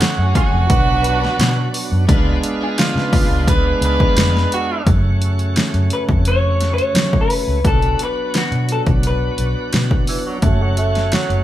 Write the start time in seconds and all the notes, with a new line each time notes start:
Already playing: F#3 A3 C#4 F#4
0.01 snare, closed hi-hat
0.18 F#2 C#4 F#4 G#4
0.35 F#4, kick, closed hi-hat
0.53 F2
0.69 B1 F#3 B3 D4 F#4 B4, kick, closed hi-hat
1.04 closed hi-hat
1.25 snare
1.39 B2, snare, closed hi-hat
1.74 open hi-hat
1.92 F#2
2.07 C#2 G#3 B3 D4 F4 B4 F5, kick, closed hi-hat
2.43 closed hi-hat
2.61 D4 F4 G#4
2.78 F4, snare, closed hi-hat
2.95 C#3 D4 F4 B4, snare
3.13 kick, open hi-hat
3.30 C#2
3.48 B4, kick, closed hi-hat
3.81 C#2 B4, closed hi-hat
4.00 kick
4.16 F2, snare, closed hi-hat
4.37 snare
4.52 F#4, closed hi-hat
4.85 F#2 C#3 A3 C#4 F#4, kick, closed hi-hat
5.22 closed hi-hat
5.39 closed hi-hat
5.56 snare, closed hi-hat
5.74 F#2, closed hi-hat
5.90 B4, closed hi-hat
6.09 F2, kick
6.25 C#5, closed hi-hat
6.61 snare, closed hi-hat
6.74 C#5
6.78 closed hi-hat
6.95 F#3, snare, closed hi-hat
7.13 kick
7.21 B4
7.30 open hi-hat
7.48 C#2
7.64 B1 F#3 B3 D4 F#4 A4, kick, closed hi-hat
7.82 closed hi-hat
7.99 closed hi-hat
8.04 B4
8.34 F#4, snare, closed hi-hat
8.52 B2, closed hi-hat
8.69 A4, closed hi-hat
8.86 B1, kick, closed hi-hat
9.03 B4, closed hi-hat
9.38 B1, closed hi-hat
9.73 B2, snare, closed hi-hat
9.91 kick
10.07 E3, open hi-hat
10.26 F#3
10.42 F#1 F#3 A3 C#4 F#4, kick, closed hi-hat
10.62 F#3
10.77 A3, closed hi-hat
10.95 snare, closed hi-hat
11.12 F#3, snare, closed hi-hat
11.30 F#1, closed hi-hat